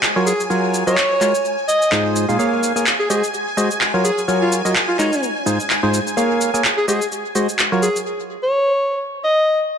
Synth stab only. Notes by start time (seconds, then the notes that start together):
0.16 F#3 F4 F#4 A#4 C#5
0.50 F#3 F4 F#4 A#4 C#5
0.87 F#3 F4 F#4 A#4 D#5
1.21 G#3 F4 F#4 A#4 C#5
1.92 G#2 G#3 D#4 F4 G#4 C5
2.29 A#2 G#3 D#4 F4 G#4 F5
2.39 A#3 G#4 A#4 C#5 F5
2.76 A#3 G#4 A#4 C#5 G#5
3.10 G#3 F#4 G#4 C5 D#5
3.57 G#3 F#4 G#4 C5 D#5
3.94 F#3 F4 F#4 A#4 C#5
4.28 F#3 F4 F#4 A#4 C#5
4.65 F#3 F4 F#4 A#4 D#5
4.99 G#3 F4 F#4 A#4 C#5
5.46 G#2 G#3 D#4 F4 G#4 C5
5.83 G#2 G#3 D#4 F4 G#4 C5
6.17 A#3 G#4 A#4 C#5 F5
6.54 A#3 G#4 A#4 C#5 G#5
6.88 G#3 F#4 G#4 C5 D#5
7.35 G#3 F#4 G#4 C5 D#5
7.72 F#3 F4 F#4 A#4 C#5